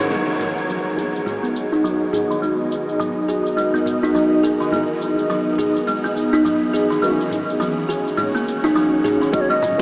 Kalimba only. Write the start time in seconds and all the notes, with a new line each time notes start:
0.10 G#3
0.68 F#3
0.97 G#4
1.26 G#3
1.43 B3
1.72 D#4
1.84 F#3
2.13 G#4
2.31 D#3
2.42 G#3
2.99 F#3
3.28 G#4
3.57 G#3
3.74 B3
4.03 D#4
4.15 F#3
4.43 G#4
4.61 D#3
4.72 G#3
5.30 F#3
5.59 G#4
5.87 G#3
6.04 B3
6.33 D#4
6.45 F#3
6.73 G#4
6.90 D#3
7.02 G#3
7.60 F#3
7.89 G#4
8.17 G#3
8.35 A#3
8.64 D#4
8.75 F#3
9.04 G#4
9.22 D#3
9.33 G#3
9.50 G#3